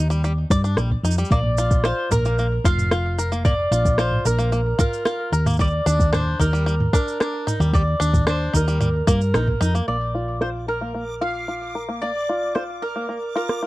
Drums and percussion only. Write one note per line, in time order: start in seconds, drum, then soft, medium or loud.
0.11 cabasa soft
0.24 cabasa soft
0.50 kick loud
0.50 cabasa medium
0.65 cabasa soft
0.77 cross-stick medium
0.77 cabasa soft
0.91 kick medium
1.05 cabasa medium
1.11 cabasa medium
1.18 cabasa soft
1.25 cabasa soft
1.31 kick loud
1.31 cabasa soft
1.43 mid tom medium
1.57 cabasa medium
1.71 kick loud
1.71 cabasa soft
1.84 cross-stick medium
1.84 cabasa soft
2.11 kick medium
2.11 mid tom medium
2.11 cabasa medium
2.25 cabasa soft
2.38 cabasa soft
2.64 kick loud
2.64 cabasa medium
2.78 mid tom medium
2.78 cabasa soft
2.91 cross-stick medium
2.91 cabasa soft
3.19 cabasa medium
3.32 cabasa soft
3.44 kick loud
3.44 mid tom medium
3.44 cabasa soft
3.72 cabasa medium
3.85 kick medium
3.85 cabasa soft
3.98 cross-stick medium
3.98 cabasa soft
4.11 mid tom medium
4.26 cabasa medium
4.39 cabasa soft
4.52 cabasa soft
4.79 kick loud
4.79 mid tom medium
4.79 cabasa medium
4.93 cabasa soft
5.06 cross-stick medium
5.06 cabasa soft
5.33 cabasa medium
5.46 mid tom medium
5.46 cabasa soft
5.50 cabasa soft
5.53 cabasa soft
5.57 kick loud
5.57 cabasa soft
5.60 cabasa soft
5.64 cabasa soft
5.70 cabasa soft
5.87 cabasa medium
6.00 kick loud
6.00 cabasa soft
6.13 cross-stick medium
6.13 mid tom medium
6.13 cabasa soft
6.16 mid tom medium
6.20 mid tom soft
6.23 mid tom soft
6.26 mid tom soft
6.30 mid tom soft
6.33 mid tom soft
6.37 kick medium
6.37 mid tom soft
6.41 cabasa medium
6.55 cabasa soft
6.68 cabasa soft
6.80 mid tom medium
6.93 kick loud
6.93 cabasa medium
7.08 cabasa soft
7.21 cross-stick medium
7.21 cabasa soft
7.47 mid tom medium
7.47 cabasa medium
7.61 cabasa soft
7.73 kick loud
7.73 cabasa soft
8.01 cabasa medium
8.13 kick loud
8.13 mid tom medium
8.13 cabasa soft
8.27 cross-stick medium
8.27 cabasa soft
8.54 kick medium
8.54 cabasa medium
8.68 cabasa soft
8.80 mid tom medium
8.80 cabasa soft
9.07 kick loud
9.07 cabasa medium
9.21 cabasa soft
9.34 cross-stick loud
9.34 cabasa soft
9.47 kick medium
9.47 mid tom medium
9.62 cabasa medium
9.75 cabasa soft
10.41 cross-stick medium
12.16 cabasa soft
12.56 cross-stick medium
13.49 cross-stick medium
13.49 cabasa soft